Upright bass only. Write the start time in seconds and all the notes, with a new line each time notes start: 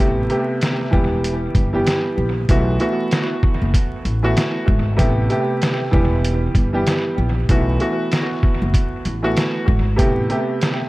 0.00 A1
0.93 E1
1.55 G1
2.18 A#1
2.49 B1
3.62 F#1
4.05 A1
4.68 G#1
4.99 A1
5.93 E1
6.55 G1
7.18 A#1
7.49 B1
8.62 F#1
9.05 A1
9.68 G#1
9.99 A1